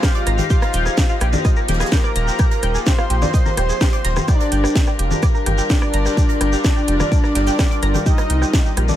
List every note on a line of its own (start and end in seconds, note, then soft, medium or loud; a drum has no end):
0.00 0.47 G#3 medium
0.00 0.47 C4 medium
0.00 4.24 D#4 medium
0.00 0.41 F4 loud
0.00 5.80 G4 medium
0.00 0.12 G4 loud
0.00 4.92 C5 medium
0.00 0.41 F5 loud
0.00 5.80 F5 medium
0.00 0.12 G5 medium
0.00 kick loud
0.00 cross-stick medium
0.00 snare loud
0.00 shekere medium
0.00 shaker loud
0.15 0.21 D5 loud
0.15 0.21 D6 medium
0.15 closed hi-hat soft
0.15 shekere soft
0.26 0.41 G#1 loud
0.26 0.30 A#5 loud
0.26 0.30 A#6 medium
0.26 cross-stick medium
0.26 closed hi-hat medium
0.26 shaker medium
0.38 0.45 G4 medium
0.38 0.45 G5 medium
0.38 closed hi-hat soft
0.38 low conga medium
0.38 shekere medium
0.50 4.24 F3 medium
0.50 4.24 A#3 medium
0.50 1.12 F4 loud
0.50 0.56 G4 loud
0.50 1.12 F5 loud
0.50 0.56 G5 medium
0.50 kick loud
0.50 shekere medium
0.50 shaker medium
0.62 0.66 A#4 medium
0.62 0.66 A#5 medium
0.62 cross-stick medium
0.62 closed hi-hat soft
0.62 shekere soft
0.73 0.88 D#1 loud
0.73 0.83 G5 medium
0.73 0.83 G6 medium
0.73 closed hi-hat loud
0.73 shaker medium
0.86 0.92 G#4 medium
0.86 0.92 G#5 medium
0.86 cross-stick medium
0.86 shekere medium
0.97 1.03 G4 medium
0.97 1.03 G5 medium
0.97 kick loud
0.97 snare loud
0.97 shekere medium
0.97 shaker medium
1.09 1.15 F4 loud
1.09 1.15 F5 medium
1.09 snare soft
1.09 shekere soft
1.21 1.36 A#1 medium
1.21 1.27 G4 medium
1.21 1.27 G5 medium
1.21 cross-stick medium
1.21 closed hi-hat medium
1.21 shaker medium
1.33 1.39 D4 medium
1.33 1.39 D5 medium
1.33 low conga medium
1.33 shekere medium
1.45 1.48 D#5 medium
1.45 1.48 D#6 medium
1.45 kick loud
1.45 cross-stick medium
1.45 shaker medium
1.45 shekere medium
1.56 1.60 A#4 medium
1.56 1.60 A#5 medium
1.56 shekere soft
1.68 1.83 D#1 medium
1.68 1.74 G4 loud
1.68 1.74 G5 medium
1.68 snare medium
1.68 closed hi-hat loud
1.68 low conga medium
1.68 shaker medium
1.74 snare medium
1.74 shaker medium
1.80 1.86 G#4 loud
1.80 1.86 G#5 medium
1.80 cross-stick medium
1.80 snare medium
1.80 shekere medium
1.80 shaker medium
1.86 snare medium
1.86 shaker medium
1.92 2.01 G4 loud
1.92 2.77 A#4 loud
1.92 2.01 G5 medium
1.92 2.77 A#5 loud
1.92 kick loud
1.92 snare loud
1.92 shaker medium
1.92 shekere medium
2.04 2.10 D5 loud
2.04 2.10 D6 medium
2.04 cross-stick medium
2.04 shekere soft
2.16 2.30 D#1 loud
2.16 2.19 A#5 loud
2.16 2.19 A#6 medium
2.16 closed hi-hat medium
2.16 shaker medium
2.28 2.34 G4 medium
2.28 2.33 G5 medium
2.28 snare medium
2.28 shekere medium
2.39 2.45 G4 loud
2.39 2.45 G5 medium
2.39 kick loud
2.39 cross-stick medium
2.39 shaker loud
2.39 shekere medium
2.51 2.55 A#4 medium
2.51 2.55 A#5 medium
2.51 closed hi-hat soft
2.51 shekere soft
2.62 2.77 D#1 loud
2.62 2.72 G5 medium
2.62 2.72 G6 medium
2.62 cross-stick medium
2.62 closed hi-hat loud
2.62 shaker medium
2.75 2.81 G#4 medium
2.75 2.81 G#5 medium
2.75 shekere medium
2.86 2.93 G4 medium
2.86 4.30 C5 loud
2.86 2.93 G5 medium
2.86 4.28 C6 loud
2.86 kick loud
2.86 snare loud
2.86 shekere medium
2.86 shaker loud
2.98 3.04 F4 loud
2.98 3.04 F5 medium
2.98 cross-stick medium
2.98 shekere soft
3.10 3.25 A#1 medium
3.10 3.16 G4 medium
3.10 3.16 G5 medium
3.10 closed hi-hat medium
3.10 shaker medium
3.22 3.28 D4 medium
3.22 3.28 D5 medium
3.22 cross-stick medium
3.22 snare medium
3.22 low conga loud
3.22 shekere medium
3.33 3.37 D#5 medium
3.33 3.37 D#6 medium
3.33 kick loud
3.33 shekere medium
3.33 shaker medium
3.46 3.49 A#4 medium
3.46 3.49 A#5 medium
3.46 snare soft
3.46 low conga medium
3.46 shekere soft
3.57 3.72 D#1 medium
3.57 3.63 G4 loud
3.57 3.63 G5 medium
3.57 cross-stick medium
3.57 snare soft
3.57 closed hi-hat loud
3.57 shaker medium
3.69 3.75 G#4 loud
3.69 3.75 G#5 medium
3.69 shekere medium
3.80 3.90 G4 loud
3.80 3.90 G5 medium
3.80 kick loud
3.80 cross-stick medium
3.80 snare loud
3.80 shekere medium
3.80 shaker medium
3.93 3.99 D5 loud
3.93 3.99 D6 medium
3.93 closed hi-hat soft
3.93 shekere soft
4.04 4.19 D#1 loud
4.04 4.08 A#5 loud
4.04 4.08 A#6 medium
4.04 snare loud
4.04 closed hi-hat medium
4.04 shaker medium
4.16 4.22 G4 medium
4.16 4.22 G5 medium
4.16 cross-stick medium
4.16 snare soft
4.16 low conga medium
4.16 shekere medium
4.28 8.96 G3 medium
4.28 4.90 D4 loud
4.28 8.02 D4 medium
4.28 8.96 F4 medium
4.28 4.34 G4 loud
4.28 8.02 G4 medium
4.28 8.02 A#4 medium
4.28 4.90 D5 loud
4.28 4.34 G5 medium
4.28 kick loud
4.28 cross-stick medium
4.28 shaker medium
4.28 shekere medium
4.40 4.44 A#4 medium
4.40 4.44 A#5 medium
4.40 closed hi-hat soft
4.40 shekere soft
4.52 4.66 G1 loud
4.52 4.61 G5 medium
4.52 4.61 G6 medium
4.52 closed hi-hat loud
4.52 shaker medium
4.58 8.96 A#4 medium
4.64 4.70 G4 medium
4.64 4.70 G5 medium
4.64 cross-stick medium
4.64 shekere medium
4.75 4.81 G4 medium
4.75 4.81 G5 medium
4.75 kick loud
4.75 snare loud
4.75 shekere medium
4.75 shaker loud
4.87 4.93 G4 medium
4.87 4.93 G5 medium
4.87 cross-stick medium
4.87 snare soft
4.87 shekere soft
4.99 5.13 F1 medium
4.99 5.05 G4 medium
4.99 5.05 G5 medium
4.99 closed hi-hat medium
4.99 shaker medium
5.11 5.17 D4 medium
5.11 5.17 D5 medium
5.11 low conga loud
5.11 shekere medium
5.23 5.26 D5 medium
5.23 5.26 D6 medium
5.23 kick loud
5.23 cross-stick medium
5.23 shaker medium
5.23 shekere medium
5.34 5.38 A#4 medium
5.34 5.38 A#5 medium
5.34 shekere soft
5.46 5.61 G1 medium
5.46 5.52 G4 loud
5.46 5.52 G5 medium
5.46 cross-stick medium
5.46 closed hi-hat loud
5.46 low conga medium
5.46 shaker medium
5.58 5.64 G4 loud
5.58 5.64 G5 medium
5.58 shekere medium
5.70 6.55 D4 loud
5.70 5.79 G4 loud
5.70 6.55 D5 loud
5.70 5.79 G5 medium
5.70 kick loud
5.70 snare loud
5.70 shaker medium
5.70 shekere medium
5.82 5.88 D5 loud
5.82 5.88 D6 medium
5.82 cross-stick medium
5.82 shekere soft
5.93 6.08 G1 loud
5.93 5.97 A#5 loud
5.93 5.97 A#6 medium
5.93 closed hi-hat medium
5.93 shaker medium
5.98 8.06 D5 medium
6.05 6.11 G4 medium
6.05 6.11 G5 medium
6.05 cross-stick medium
6.05 snare medium
6.05 shekere medium
6.17 6.23 G4 loud
6.17 6.23 G5 medium
6.17 kick loud
6.17 shekere medium
6.17 shaker medium
6.29 6.33 A#4 medium
6.29 6.33 A#5 medium
6.29 closed hi-hat soft
6.29 shekere soft
6.41 6.55 G1 loud
6.41 6.50 G5 medium
6.41 6.50 G6 medium
6.41 cross-stick medium
6.41 closed hi-hat loud
6.41 shaker medium
6.53 6.59 G4 medium
6.53 6.59 G5 medium
6.53 shekere medium
6.64 7.97 D4 loud
6.64 6.70 G4 medium
6.64 7.97 D5 loud
6.64 6.70 G5 medium
6.64 kick loud
6.64 cross-stick soft
6.64 snare loud
6.64 shekere medium
6.64 shaker medium
6.76 6.82 G4 medium
6.76 6.82 G5 medium
6.76 shekere soft
6.88 7.02 F1 medium
6.88 6.94 G4 medium
6.88 6.94 G5 medium
6.88 closed hi-hat loud
6.88 shaker medium
7.00 7.06 D4 medium
7.00 7.06 D5 medium
7.00 cross-stick medium
7.00 snare medium
7.00 low conga medium
7.00 shekere medium
7.12 7.15 D5 medium
7.12 7.15 D6 medium
7.12 kick loud
7.12 shekere medium
7.12 shaker medium
7.24 7.27 A#4 medium
7.24 7.27 A#5 medium
7.24 cross-stick medium
7.24 snare soft
7.24 shekere soft
7.35 7.50 G1 medium
7.35 7.41 G4 loud
7.35 7.41 G5 medium
7.35 snare loud
7.35 closed hi-hat loud
7.35 shaker medium
7.47 7.53 G4 loud
7.47 7.53 G5 medium
7.47 snare loud
7.47 shaker medium
7.47 shekere medium
7.59 7.68 G4 loud
7.59 7.68 G5 medium
7.59 kick loud
7.59 cross-stick medium
7.59 snare loud
7.59 shaker medium
7.59 shekere medium
7.71 7.77 D5 loud
7.71 7.77 D6 medium
7.71 closed hi-hat soft
7.71 shekere soft
7.82 7.97 G1 loud
7.82 7.86 A#5 loud
7.82 7.86 A#6 medium
7.82 cross-stick medium
7.82 closed hi-hat loud
7.82 shaker medium
7.94 8.00 G4 medium
7.94 8.00 G5 medium
7.94 closed hi-hat soft
7.94 low conga medium
7.94 shekere medium
8.06 8.96 C3 medium
8.06 8.96 C4 medium
8.06 8.68 D#4 loud
8.06 8.96 D#4 medium
8.06 8.12 G4 loud
8.06 8.68 D#5 loud
8.06 8.12 G5 medium
8.06 kick loud
8.06 shekere medium
8.06 shaker medium
8.18 8.22 A#4 medium
8.18 8.22 A#5 medium
8.18 cross-stick medium
8.18 closed hi-hat soft
8.18 shekere soft
8.30 8.44 C2 loud
8.30 8.39 G5 medium
8.30 8.39 G6 medium
8.30 closed hi-hat loud
8.30 shaker medium
8.42 8.48 G4 medium
8.42 8.48 G5 medium
8.42 cross-stick medium
8.42 shekere medium
8.53 8.59 G4 medium
8.53 8.59 G5 medium
8.53 kick loud
8.53 snare loud
8.53 shekere medium
8.53 shaker loud
8.65 8.71 G4 medium
8.65 8.71 G5 medium
8.65 snare soft
8.65 shekere soft
8.77 8.91 A#1 medium
8.77 8.83 G4 medium
8.77 8.83 G5 medium
8.77 cross-stick medium
8.77 closed hi-hat loud
8.77 shaker medium
8.88 8.95 D4 medium
8.88 8.95 D5 medium
8.88 low conga medium
8.88 shekere medium